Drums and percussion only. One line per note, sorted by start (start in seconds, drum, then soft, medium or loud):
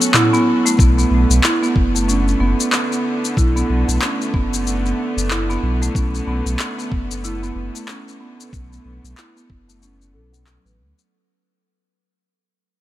0.01 shaker medium
0.14 clap loud
0.14 mid tom medium
0.14 shaker medium
0.34 shaker soft
0.66 shaker medium
0.79 kick loud
0.79 shaker medium
0.99 shaker soft
1.31 shaker medium
1.44 clap loud
1.44 shaker medium
1.64 shaker soft
1.76 kick loud
1.96 shaker medium
2.09 shaker medium
2.28 shaker soft
2.60 shaker medium
2.72 clap loud
2.72 shaker medium
2.92 shaker soft
3.25 shaker medium
3.37 kick loud
3.37 shaker medium
3.57 shaker soft
3.89 shaker medium
4.02 clap medium
4.02 shaker medium
4.21 shaker soft
4.34 kick loud
4.54 shaker medium
4.67 shaker medium
4.86 shaker soft
5.18 shaker medium
5.31 clap loud
5.31 shaker soft
5.50 shaker soft
5.83 shaker medium
5.95 kick loud
5.95 shaker medium
6.15 shaker soft
6.47 shaker medium
6.59 clap loud
6.59 shaker medium
6.79 shaker soft
6.92 kick loud
7.11 shaker medium
7.24 shaker medium
7.43 shaker soft
7.75 shaker medium
7.88 clap medium
7.88 shaker medium
8.08 shaker soft
8.40 shaker medium
8.53 kick loud
8.53 shaker medium
8.73 shaker soft
9.05 shaker medium
9.17 clap medium
9.17 shaker medium
9.37 shaker soft
9.50 kick medium
9.69 shaker medium
9.82 shaker soft
10.02 shaker soft
10.34 shaker medium
10.47 clap medium
10.47 shaker soft
10.66 shaker soft
10.99 shaker medium